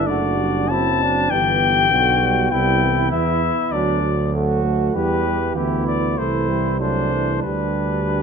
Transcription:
Already playing: D4 E4
0.07 F#1 A3 D4 F#4 D5
0.38 G3
0.69 F#3 C4 E4 A5
1.03 D4
1.30 G1 E3 B3 G4 G5
1.91 B1 D3 B3 F#4
2.22 G3
2.51 C2 G3 E4 G5
2.83 E3
3.12 E2 E5
3.72 D2 F#3 D4 D5
4.03 F#3
4.33 A3 F#4
4.64 A3
4.94 E2 E3 G3 G4 B4
5.26 G3
5.55 D2 B3 E4 G4
5.87 D5
6.18 C2 E3 A3 E4 C5
6.49 G3
6.79 F#3 A3 D4 C5
7.12 E3
7.42 D2 G3 D4 B4

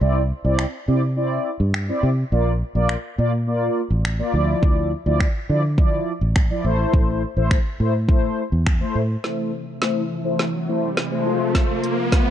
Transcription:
0.01 C2 C4 E4 D5
0.44 C2 C4 E4 D5
0.59 finger snap
0.88 C3 C4 E4 D5
1.16 C4 E4 D5
1.60 G2
1.74 finger snap
1.89 C4 E4 D5
2.03 C3
2.32 A#1 A#3 F4 D5
2.75 A#1 A#3 F4 D5
2.89 finger snap
3.18 A#2 A#3 F4 D5
3.47 A#3 F4 D5
3.90 A1
4.05 finger snap
4.19 A#3 F4 D5
4.33 D2 F3 E4 D5
4.63 D2, kick
5.06 D2 F3 E4 D5
5.20 finger snap, kick
5.49 D3 F3 E4 D5
5.78 F3 E4 D5, kick
6.21 A1
6.36 finger snap, kick
6.50 F3 E4 D5
6.64 A1 A3 E4 C5
6.94 A1, kick
7.36 A1 A3 E4 C5
7.51 finger snap, kick
7.80 A2 A3 E4 C5
8.09 A3 E4 C5, kick
8.52 E2
8.67 finger snap, kick
8.80 A3 E4 C5
8.95 A2
9.24 C3 E3 A3 E4 C5, snare, riser
9.81 A3 E4 C5, snare
10.24 A3 E4 C5
10.39 snare
10.68 A3 E4 C5
10.97 snare
11.11 A3 E4 C5
11.25 F3 A3 F4 C5
11.55 kick, snare, closed hi-hat
11.84 closed hi-hat
12.12 A3 F4 C5, kick, snare, closed hi-hat

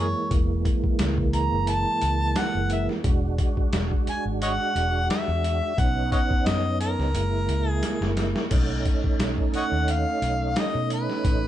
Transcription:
Already playing: F#2 E3 G#3 A#3
0.00 C#5
0.31 E1, kick, closed hi-hat
0.65 kick, closed hi-hat
0.84 muted fingered electric bass stroke, kick
0.99 C#2, snare, closed hi-hat
1.18 kick
1.33 A#5, closed hi-hat
1.52 F#1
1.67 A5, closed hi-hat
2.01 C#2, closed hi-hat
2.36 F#5, muted fingered electric bass stroke, snare, closed hi-hat
2.55 F#1
2.70 E5, closed hi-hat
2.89 snare
3.03 E1 G#3 D4 F#4, kick, closed hi-hat
3.38 kick, closed hi-hat
3.57 kick
3.73 E1, snare, closed hi-hat
3.91 kick
4.07 G#5, muted fingered electric bass stroke, closed hi-hat
4.25 G#1
4.42 C#5 D#5 F#5, closed hi-hat
4.75 E1, closed hi-hat
5.10 E5, snare, closed hi-hat
5.28 E2
5.44 closed hi-hat
5.77 B1 B3 C#4 D#4 F#5, kick, closed hi-hat
6.12 C#5 D#5 F#5, kick, closed hi-hat
6.31 muted fingered electric bass stroke, kick
6.46 F#2 D#5, snare, closed hi-hat
6.81 A#4, closed hi-hat
6.99 C#2, snare
7.13 F#1 G#3 A#3 E4, closed hi-hat
7.48 C#2, closed hi-hat
7.70 G#4
7.83 snare, closed hi-hat
8.01 F#1, snare
8.17 snare, closed hi-hat
8.36 snare
8.50 B1 A3 C#4 D#4, kick, closed hi-hat, crash
8.85 kick, closed hi-hat
9.04 kick
9.19 B1, snare, closed hi-hat
9.38 kick
9.54 C#5 D#5 F#5, muted fingered electric bass stroke, closed hi-hat
9.72 D#2
9.88 F5, closed hi-hat
10.22 B1, closed hi-hat
10.56 D#5, snare, closed hi-hat
10.75 B2
10.90 B4, closed hi-hat
11.10 snare
11.25 A1, kick, closed hi-hat

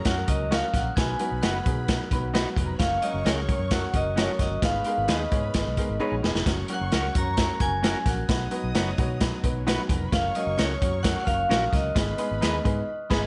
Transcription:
Already playing: A#4 A#5
0.05 F#2 F#3 A#3 C#4 F#4 A#4 F#5 F#6, kick, snare, closed hi-hat
0.27 C#2 F#3 A#3 C#4 F#4 A#4 D#5 D#6, kick, closed hi-hat
0.51 F#3 A#3 C#4 F#4 A#4 F5 F6, snare, closed hi-hat
0.73 A#1 F#3 A#3 C#4 F#4 A#4 F#5 F#6, kick, snare, closed hi-hat
0.96 B1 F#3 B3 D#4 F#4 B4 G#5 B5 G#6, kick, snare, closed hi-hat
1.19 F#3 B3 D#4 F#4 B4, closed hi-hat
1.32 B1
1.41 F#1 F#3 B3 D#4 F#4 B4 F#5 F#6, snare, closed hi-hat
1.66 B2 F#3 B3 D#4 F#4 G#4, kick, closed hi-hat
1.88 F#3 B3 D#4 F#4 A#4, kick, snare, closed hi-hat
2.11 B1 F#3 B3 D#4 F#4 B4, kick, closed hi-hat
2.34 F#3 B3 D#4 F#4 B4 D#5, snare, closed hi-hat
2.42 F4 F5
2.48 F#4 F#5
2.56 F1 F#3 B3 D#4 F#4 G#4 B4 G#5, kick, closed hi-hat
2.63 A#4 A#5
2.71 B4 B5
2.79 F#1 F#3 A#3 C#4 F#4 A#4 C#5 F5 C#6 F6, kick, snare, closed hi-hat
3.02 F#3 A#3 C#4 F#4 A#4 D#5 D#6, closed hi-hat
3.14 F#1
3.25 C#2 F#3 A#3 C#4 F#4 G#4 A#4 C#5 C#6, snare, closed hi-hat
3.48 F#3 A#3 C#4 F#4 C#5, kick, closed hi-hat
3.59 F#2
3.70 F#3 A#3 C#4 F#4 A#4 F#5 F#6, kick, snare, closed hi-hat
3.94 F#1 F#3 A#3 C#4 F#4 A#4 D#5 D#6, kick, closed hi-hat
4.16 F#3 A#3 C#4 F#4 A#4 C#5 C#6, snare, closed hi-hat
4.39 G1 F#3 A#3 C#4 F#4 A#4 D#5 D#6, kick, snare, closed hi-hat
4.62 G#1 G#3 B3 D#4 G#4 B4 F5 B5 F6, kick, snare, closed hi-hat
4.84 G#3 B3 D#4 G#4 A#4, closed hi-hat
4.98 G#1
5.08 D#2 G#3 B3 D#4 G#4 B4 D#5 D#6, snare, closed hi-hat
5.31 G#2 G#3 B3 D#4 G#4 C#5, kick, closed hi-hat
5.54 G#1 G#3 B3 D#4 G#4 B4, kick, snare, closed hi-hat
5.67 B1
5.77 G#3 B3 D#4 G#4 A#4, kick, closed hi-hat
5.89 G#1
6.00 G#3 B3 D#4 G#4 B4 C#5
6.12 A#1
6.16 F#4 F#5
6.23 E1 G#3 B3 D#4 G#4 B4 G#5, snare
6.30 A#4 A#5
6.35 F1 B4 B5, snare
6.46 F#1 F#3 A#3 C#4 F#4 A#4 C#5 C#6, kick, snare, closed hi-hat
6.68 F#3 A#3 C#4 F#4 A#4, closed hi-hat
6.73 F#5 F#6
6.81 F#1
6.92 C#2 F#3 A#3 C#4 F#4 A#4, snare, closed hi-hat
7.15 F#2 F#3 A#3 C#4 F#4 A#4 A#5 A#6, kick, closed hi-hat
7.37 F#3 A#3 C#4 F#4 A#4, kick, snare, closed hi-hat
7.60 F#1 F#3 A#3 C#4 F#4 A#4 G#5 G#6, kick, closed hi-hat
7.82 F#3 A#3 C#4 F#4 A#4, snare, closed hi-hat
8.06 A#1 F#3 A#3 C#4 F#4 A#4 F#5 F#6, kick, snare, closed hi-hat
8.28 B1 F#3 B3 D#4 F#4 B4 D#5 D#6, kick, snare, closed hi-hat
8.51 F#3 B3 D#4 F#4 B4, closed hi-hat
8.64 B1
8.74 F#1 F#3 B3 D#4 F#4 B4 C#5, snare, closed hi-hat
8.98 B2 F#3 B3 D#4 F#4 C#5, kick, closed hi-hat
9.21 F#3 B3 D#4 F#4 B4, kick, snare, closed hi-hat
9.44 B1 F#3 B3 D#4 F#4 B4, kick, closed hi-hat
9.58 C#4 C#5
9.66 F#3 B3 D#4 F#4 B4 D#5, snare, closed hi-hat
9.73 F4 F5
9.81 F#4 F#5
9.87 F1 F#3 B3 D#4 F#4 G#4 B4 G#5, kick, closed hi-hat
9.95 A#4 A#5
10.04 B4 B5
10.12 F#1 F#3 A#3 C#4 F#4 A#4 C#5 F5 C#6 F6, kick, snare, closed hi-hat
10.35 F#3 A#3 C#4 F#4 A#4 D#5 D#6, closed hi-hat
10.47 F#1
10.57 C#2 F#3 A#3 C#4 F#4 A#4 C#5 C#6, snare, closed hi-hat
10.81 F#2 F#3 A#3 C#4 F#4 A#4, kick, closed hi-hat
11.03 F#3 A#3 C#4 F#4 A#4 F#5 F#6, kick, snare, closed hi-hat
11.20 F#5 F#6
11.25 F#1 F#3 A#3 C#4 F#4 A#4 F5 F6, kick, closed hi-hat
11.49 A#1 F#3 A#3 C#4 F#4 A#4, snare, closed hi-hat
11.70 C#2 F#3 A#3 C#4 F#4 A#4 D#5 D#6, kick, closed hi-hat
11.74 snare
11.95 G#1 G#3 B3 D#4 G#4 B4 B5, kick, snare, closed hi-hat
12.18 G#3 B3 D#4 G#4 B4, closed hi-hat
12.31 G#1
12.41 D#2 G#3 B3 D#4 G#4 B4, snare, closed hi-hat
12.64 G#2 G#3 B3 D#4 G#4 B4, kick, closed hi-hat
13.10 G#1 G#3 B3 D#4 G#4 B4 B5, kick, snare, crash

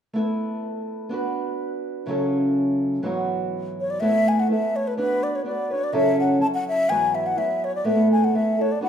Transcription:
0.13 A3 B3 E4 A4 B4
1.09 B3 D4 F#4
1.14 B4
2.06 F#2 C#3 F#3 C#4 E4
2.10 A4
3.02 G#2 E3 F#3 B3 E4 F#4
3.81 C#5
3.90 D5
4.00 A2 A3 B3 E4 A4 E5
4.28 G#5
4.40 F#5
4.49 A3 B3 E4 A4 E5
4.76 C#5
4.88 B4
4.97 B3 D4 F#4 B4
5.23 D5
5.35 C#5
5.44 B3 D4 F#4 B4 D5
5.70 D4 F#4 B4 C#5
5.84 D5
5.92 F#2 C#3 F#3 C#4 E4 A4 E5
6.20 F#5
6.40 F#3 C#4 E4 A4 A5
6.55 F#5
6.68 E5
6.89 G#2 E3 F#3 B3 E4 F#4 G#5
7.15 E5
7.26 F#5
7.36 F#3 B3 E4 F#4 E5
7.64 C#5
7.75 D5
7.84 A2 A3 B3 E4 A4 E5
8.12 G#5
8.24 F#5
8.33 A3 B3 E4 A4 E5
8.58 B3 E4 A4 C#5
8.72 D5
8.81 B3 D4 F#4 B4 F#5

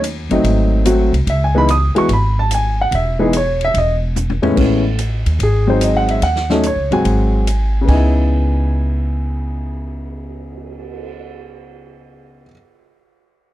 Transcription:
Already playing: D#2
0.04 hi-hat pedal, ride
0.30 G1 F#3 A3 C4 D#4, ride
0.44 G#1, kick, ride
0.85 F#3 A3 C4 F#4, hi-hat pedal, ride
1.12 C2, ride
1.27 C#2 E5, kick, ride
1.44 G#5
1.55 E3 G#3 B3 D#4 B5
1.69 D#6, hi-hat pedal, ride
1.95 E3 G#3 B3 F#4 C#6, muted upright bass stroke, ride
2.09 G#1, kick, ride
2.13 B5
2.39 A5
2.51 G#5, hi-hat pedal, ride
2.81 F#5
2.91 E1 E5, kick, ride
3.19 E3 G#3 B3 D#4 G#4
3.33 C#5, hi-hat pedal, ride
3.61 E5, ride
3.74 E1, kick, ride
3.78 D#5
4.16 floor tom, hi-hat pedal
4.30 floor tom
4.42 A2 E3 G#3 B3 C#4, muted upright bass stroke, floor tom
4.56 A1 E3 G#3 B3 C#4, kick, crash
4.99 hi-hat pedal, ride
5.26 D#2, ride
5.39 G#1, kick, ride
5.43 G#4
5.67 F#3 G#3 C4 D#4 C5
5.81 D#5, hi-hat pedal, ride
5.97 F#5
6.08 E5, ride
6.22 D#2 F#5, kick, ride
6.36 snare
6.50 F#3 A3 C#4 D#4 A4, snare
6.63 C#5, hi-hat pedal, ride
6.76 C#2
6.91 G1 F#3 G#3 C4 F#4 G#5, ride
7.05 G#1, kick, ride
7.47 hi-hat pedal, ride
7.81 C#3 B3
7.88 C#2 D#4 G#5, kick, crash
7.93 E4
8.16 cymbal swell

